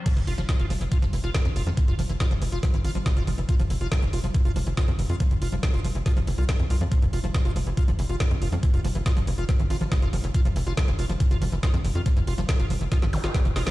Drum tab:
CC |x---------------|----------------|----------------|----------------|
HH |xxoxxxoxxxoxxxox|xxoxxxoxxxoxxxox|xxoxxxoxxxoxxxox|xxoxxxoxxxoxxxox|
SD |----o-------o---|----o---o---o---|----o-------o---|----o---o---o---|
BD |o---o---o---o---|o---o---o---o---|o---o---o---o---|o---o---o---o---|

CC |----------------|----------------|----------------|----------------|
HH |xxoxxxoxxxoxxxox|xxoxxxoxxxoxxxox|xxoxxxoxxxoxxxox|xxoxxxoxxxoxxxox|
SD |----o-------o---|----o---o---o---|----o-------o---|----o---oo-oo-oo|
BD |o---o---o---o---|o---o---o---o---|o---o---o---o---|o---o---o---o---|